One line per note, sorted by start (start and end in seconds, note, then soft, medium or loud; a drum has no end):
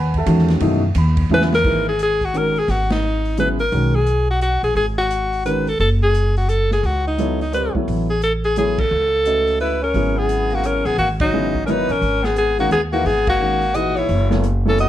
0.00 0.25 D#2 loud
0.00 0.13 B4 medium
0.00 0.13 F#5 medium
0.00 0.13 G#5 medium
0.00 0.13 B5 loud
0.14 0.48 E5 medium
0.14 0.48 A5 medium
0.14 kick medium
0.14 ride soft
0.18 0.48 A4 medium
0.18 0.48 F#5 medium
0.26 0.60 E2 loud
0.26 0.78 D#3 medium
0.26 0.79 G#3 medium
0.26 0.79 C#4 medium
0.26 0.79 F#4 medium
0.26 hi-hat pedal medium
0.26 ride medium
0.39 snare soft
0.48 snare soft
0.48 ride soft
0.60 0.95 F#2 medium
0.60 0.81 B2 medium
0.60 0.81 E3 medium
0.60 0.81 A3 medium
0.60 0.81 D#4 medium
0.60 ride medium
0.95 1.29 D#2 loud
0.95 1.29 B5 medium
0.95 hi-hat pedal medium
0.95 ride medium
1.17 kick medium
1.17 ride medium
1.29 1.63 E2 medium
1.29 1.50 C#3 medium
1.29 1.50 F#3 medium
1.29 1.51 B3 medium
1.29 1.51 E4 medium
1.29 1.45 G#5 medium
1.34 1.43 B4 loud
1.41 snare medium
1.53 1.86 A#4 loud
1.53 snare medium
1.64 2.64 G#1 medium
1.64 1.85 E3 medium
1.64 1.85 A#3 medium
1.64 1.85 D#4 medium
1.64 1.85 G#4 medium
1.64 1.85 B4 medium
1.64 kick medium
1.64 crash medium
1.89 2.00 G#4 medium
1.99 2.26 G#4 loud
1.99 closed hi-hat medium
2.21 2.39 F#4 medium
2.21 kick soft
2.21 open hi-hat soft
2.34 2.54 D#3 medium
2.34 2.54 G#3 soft
2.34 2.54 C#4 medium
2.34 2.54 F#4 medium
2.34 2.54 A#4 medium
2.34 2.61 A#4 medium
2.34 closed hi-hat soft
2.56 2.72 G#4 medium
2.56 open hi-hat soft
2.68 3.68 G#1 medium
2.68 2.91 F#4 medium
2.68 snare soft
2.68 open hi-hat soft
2.90 3.35 D#4 medium
2.90 snare medium
2.90 ride medium
3.25 open hi-hat soft
3.37 3.57 C#3 medium
3.37 3.58 F#3 medium
3.37 3.58 B3 medium
3.37 3.58 E4 medium
3.37 3.58 G#4 medium
3.37 3.49 B4 medium
3.37 closed hi-hat medium
3.59 3.97 A#4 medium
3.59 open hi-hat soft
3.72 4.59 B1 medium
3.72 3.92 D#3 medium
3.72 3.92 G#3 medium
3.72 3.92 C#4 medium
3.72 3.92 F#4 medium
3.72 3.92 A#4 medium
3.72 open hi-hat soft
3.95 4.29 G#4 medium
4.06 closed hi-hat medium
4.30 4.41 F#4 medium
4.41 4.62 F#4 medium
4.41 closed hi-hat soft
4.63 4.75 A#1 medium
4.63 4.76 G#4 medium
4.63 open hi-hat soft
4.75 5.75 G#1 medium
4.75 4.86 G#4 medium
4.75 open hi-hat soft
4.98 5.42 F#4 medium
5.11 closed hi-hat medium
5.33 open hi-hat soft
5.45 5.65 D#3 medium
5.45 5.65 G#3 medium
5.45 5.65 C#4 medium
5.45 5.65 F#4 medium
5.45 5.65 A#4 medium
5.45 5.70 B4 medium
5.45 closed hi-hat medium
5.67 5.80 A4 medium
5.67 open hi-hat soft
5.80 6.79 F#1 medium
5.80 5.90 A4 medium
5.80 open hi-hat soft
6.03 6.35 G#4 medium
6.14 closed hi-hat medium
6.36 6.51 F#4 medium
6.36 open hi-hat soft
6.49 6.71 A4 medium
6.49 closed hi-hat medium
6.71 6.87 G#4 medium
6.71 snare soft
6.83 7.70 C#2 medium
6.83 7.06 F#4 medium
6.83 open hi-hat soft
7.07 7.39 D#4 medium
7.18 7.38 F#3 medium
7.18 7.38 B3 medium
7.18 7.38 E4 medium
7.18 7.38 A4 medium
7.18 7.38 C#5 medium
7.18 closed hi-hat medium
7.41 7.53 D#4 medium
7.41 open hi-hat soft
7.52 7.72 G3 medium
7.52 7.72 C4 medium
7.52 7.72 F4 medium
7.52 7.72 A#4 medium
7.52 7.74 B4 medium
7.52 7.73 D5 medium
7.52 closed hi-hat medium
7.75 8.05 F#3 medium
7.75 8.05 B3 medium
7.75 8.05 E4 medium
7.75 8.05 A4 medium
7.75 8.05 C#5 medium
7.75 muted upright bass stroke soft
7.75 kick medium
7.88 8.87 A1 medium
7.88 open hi-hat soft
8.10 8.21 G#4 medium
8.22 8.33 A4 medium
8.22 closed hi-hat medium
8.44 8.56 G#4 medium
8.44 open hi-hat soft
8.56 8.76 F#3 medium
8.56 8.76 B3 soft
8.56 8.77 E4 medium
8.56 8.82 G#4 medium
8.56 8.76 A4 medium
8.56 8.77 C#5 medium
8.56 closed hi-hat medium
8.78 9.60 A4 medium
8.78 kick medium
8.78 ride medium
8.91 9.91 C#2 medium
9.25 9.78 A3 medium
9.25 9.78 C#4 soft
9.25 9.78 F#4 medium
9.25 9.78 B4 medium
9.25 9.78 D#5 medium
9.25 closed hi-hat medium
9.47 open hi-hat soft
9.60 9.81 E4 medium
9.60 9.81 B4 medium
9.60 open hi-hat soft
9.82 10.19 C#4 medium
9.82 10.20 A#4 medium
9.94 10.81 G#1 medium
9.94 10.91 C#3 medium
9.94 10.91 F#3 medium
9.94 10.91 B3 medium
9.94 10.91 E4 soft
9.94 10.91 G#4 medium
9.94 open hi-hat soft
10.17 10.53 B3 medium
10.17 10.56 G#4 medium
10.29 closed hi-hat medium
10.50 10.67 A#3 medium
10.50 open hi-hat soft
10.54 10.68 F#4 medium
10.63 10.88 C#4 medium
10.63 10.87 A#4 medium
10.63 closed hi-hat medium
10.85 10.97 A1 medium
10.85 10.99 B3 medium
10.85 10.98 G#4 medium
10.85 open hi-hat soft
10.98 11.85 G#1 medium
10.98 11.09 A#3 medium
10.98 11.08 F#4 medium
10.98 open hi-hat soft
11.20 11.62 F#3 medium
11.20 11.62 D#4 medium
11.20 kick medium
11.20 ride medium
11.33 11.53 C#3 medium
11.33 11.52 F#3 medium
11.33 11.53 B3 medium
11.33 11.53 E4 medium
11.33 11.53 G#4 medium
11.55 kick soft
11.65 11.87 F#3 medium
11.65 11.87 B3 medium
11.65 11.70 C#4 medium
11.65 11.91 D#4 medium
11.65 11.87 E4 medium
11.65 11.72 A#4 medium
11.65 11.88 A#4 medium
11.65 closed hi-hat medium
11.69 11.93 B4 loud
11.69 11.88 C#5 medium
11.88 12.01 A1 medium
11.88 12.25 C#4 medium
11.88 12.27 A#4 medium
11.88 open hi-hat soft
12.02 12.67 G#1 medium
12.02 open hi-hat soft
12.23 12.36 B3 medium
12.23 12.37 G#4 medium
12.23 snare medium
12.36 12.57 B3 medium
12.36 12.58 G#4 medium
12.36 closed hi-hat medium
12.58 12.70 D#3 medium
12.58 12.70 G#3 medium
12.58 12.71 A#3 medium
12.58 12.70 C#4 medium
12.58 12.70 F#4 medium
12.58 12.71 F#4 medium
12.58 12.70 A#4 medium
12.58 open hi-hat soft
12.71 13.03 D#2 medium
12.71 12.81 B3 medium
12.71 12.82 G#4 medium
12.71 closed hi-hat soft
12.92 13.04 E3 medium
12.92 13.07 A#3 medium
12.92 13.04 A#3 medium
12.92 13.04 D#4 medium
12.92 13.07 F#4 medium
12.92 13.05 G#4 medium
12.92 13.04 B4 medium
12.92 open hi-hat soft
13.05 14.05 G#1 medium
13.05 13.27 B3 medium
13.05 13.28 G#4 loud
13.05 open hi-hat soft
13.27 13.76 A#3 medium
13.27 13.77 F#4 loud
13.27 kick medium
13.27 ride medium
13.40 13.60 D#3 medium
13.40 13.60 G#3 soft
13.40 13.60 C#4 medium
13.40 13.60 F#4 soft
13.40 13.60 A#4 medium
13.61 open hi-hat soft
13.74 14.09 A#2 medium
13.74 14.09 E3 medium
13.74 14.09 D#4 medium
13.74 14.00 F#4 medium
13.74 14.09 G#4 medium
13.74 14.09 B4 medium
13.74 13.98 D#5 medium
13.74 closed hi-hat medium
13.96 14.32 E4 medium
13.96 14.31 C#5 medium
13.96 open hi-hat soft
14.09 14.89 F#1 medium
14.09 open hi-hat soft
14.30 14.42 F#3 medium
14.30 14.42 B3 medium
14.30 14.42 E4 medium
14.30 14.42 A4 medium
14.30 14.43 C#5 medium
14.30 snare medium
14.44 closed hi-hat medium
14.65 14.89 F#3 medium
14.65 14.89 B3 medium
14.65 14.78 C#4 medium
14.65 14.89 E4 medium
14.65 14.89 A4 medium
14.65 14.79 A4 medium
14.65 14.89 C#5 medium
14.78 14.89 F#4 medium
14.78 14.89 D#5 loud
14.78 closed hi-hat medium